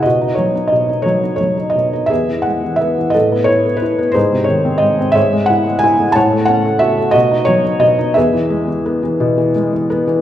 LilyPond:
<<
  \new Staff \with { instrumentName = "Felt piano" } { \time 6/8 \key e \major \tempo 4. = 59 << { dis''8 cis''8 dis''8 cis''8 cis''8 dis''8 | e''8 fis''8 e''8 dis''8 cis''8 b'8 | bis'8 cis''8 dis''8 e''8 fis''8 gis''8 | a''8 fis''8 e''8 dis''8 cis''8 dis''8 |
e''2 r4 | } \\ { fis'4. r4. | <gis' b'>4. <a' b'>4. | <dis' gis'>4. <gis' cis''>4. | <cis'' fis''>4. fis'4. |
<gis' b'>2 r4 | } >> }
  \new Staff \with { instrumentName = "Felt piano" } { \clef bass \time 6/8 \key e \major b,16 dis'16 fis16 dis'16 b,16 dis'16 fis16 dis'16 fis16 dis'16 b,16 dis'16 | e,16 e16 gis16 e16 b16 e16 a,16 b16 e'16 b16 e'16 b16 | gis,16 bis,16 dis16 bis16 gis,16 bis16 gis,16 gis16 e'16 gis16 e'16 gis16 | a,16 a16 cis'16 a16 fis'16 a16 b,16 dis'16 fis16 dis'16 b,16 dis'16 |
e,16 e16 gis16 e16 b16 e16 b,16 e16 gis16 e16 b16 e16 | }
>>